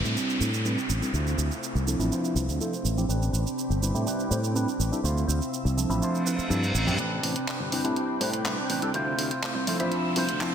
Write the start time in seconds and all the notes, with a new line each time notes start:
Already playing: C4 D4 G4 B4 G5 B5, downlifter
0.04 A2 G3 C4 D4 E4, shaker
0.16 C4 D4 G4 B4, shaker
0.30 shaker
0.40 A2 G3 C4 D4 E4 C5, shaker
0.54 shaker
0.65 G3 C4 D4 E4 G4 B4, shaker
0.78 shaker
0.89 A1, shaker
1.02 G3 C4 D4 E4 A4, shaker
1.13 D2 A3 C4 E4 F4 C5 E6, shaker
1.27 shaker
1.38 D2, shaker
1.51 shaker
1.63 shaker
1.75 C2, shaker
1.87 F3 C4 D4 E4 A4, shaker
1.99 A1 F3 C4 D4 E4 B4, shaker
2.11 A3 E4 F4 C5, shaker
2.25 shaker
2.36 C2 F3 C4 D4 E4 B4, shaker
2.48 D2, shaker
2.60 F3 A3 C4 D4 E4 F4 A4 C5, shaker
2.73 shaker
2.85 A1, shaker
2.97 F3 C4 D4 E4 G4, shaker
3.09 A1 C4 D4 G4 B4 G5 B5 D6, shaker
3.22 shaker
3.33 A1 D4 G4 B4, shaker
3.47 shaker
3.59 shaker
3.70 G1, shaker
3.82 G3 C4 D4 E4 B4, shaker
3.94 A2 G3 C4 D4 E4, shaker
4.06 C4 D4 G4 B4, shaker
4.20 shaker
4.31 A2 G3 C4 D4 E4 C5, shaker
4.44 shaker
4.54 G3 C4 D4 E4 G4 B4, shaker
4.68 shaker
4.79 A1, shaker
4.92 G3 C4 D4 E4 A4, shaker
5.04 D2 A3 E4 F4 C5 E6, shaker
5.18 shaker
5.27 D2 E4 F4 C5, shaker
5.42 shaker
5.54 shaker
5.65 C2, shaker
5.77 F3 C4 D4 E4 A4, shaker
5.89 A1 F3 C4 D4 E5 B5, shaker
6.00 A3 E4 F4 C5, reverse cymbal, shaker
6.15 shaker
6.26 F3 C4 D4 E4 B4, shaker
6.38 muted fingered electric bass stroke, shaker
6.50 G2 F3 C4 D4 E4 A4, shaker
6.63 shaker
6.74 A1, shaker
6.87 G2 F3 C4 D4 E4 G4, shaker
6.98 A1 C4 D4 G4 B4 G5 B5 D6, closed hi-hat, riser
7.23 A1, open hi-hat
7.36 D4 G4 B4, closed hi-hat
7.48 C4 D4 G4 B4, clap, closed hi-hat
7.60 G1 D4 G4 B4
7.72 G3 C4 D4 E4 G4 B4, open hi-hat, tambourine
7.84 A2 G3 C4 D4 E4 G4 B4, closed hi-hat
7.96 closed hi-hat, tambourine
8.09 tambourine
8.20 A2 G3 C4 D4 E4 G4 B4 C5, open hi-hat, tambourine
8.34 D4 G4, closed hi-hat
8.45 G3 C4 D4 E4 G4 B4, clap, closed hi-hat
8.69 A1 C4 D4 G4 B4, open hi-hat, tambourine
8.82 G3 C4 D4 E4 G4 A4 B4, closed hi-hat, tambourine
8.94 D2 A3 C4 E4 F4 C5 E6, closed hi-hat, tambourine
9.07 tambourine
9.18 D2, open hi-hat, tambourine
9.30 E4 F4 C5, closed hi-hat, tambourine
9.43 A3 E4 F4 C5, clap, closed hi-hat
9.55 C2 E4 F4 C5, tambourine
9.67 F3 A3 C4 D4 E4 F4 A4 C5, open hi-hat, tambourine
9.79 A1 F3 C4 D4 E4 F4 C5 E5 B5, closed hi-hat
9.91 closed hi-hat, tambourine
10.04 tambourine
10.16 C2 F3 A3 C4 D4 E4 F4 B4 C5, open hi-hat, tambourine
10.28 D2, closed hi-hat, tambourine
10.41 F3 A3 C4 D4 E4 F4 A4 C5, clap, closed hi-hat, tambourine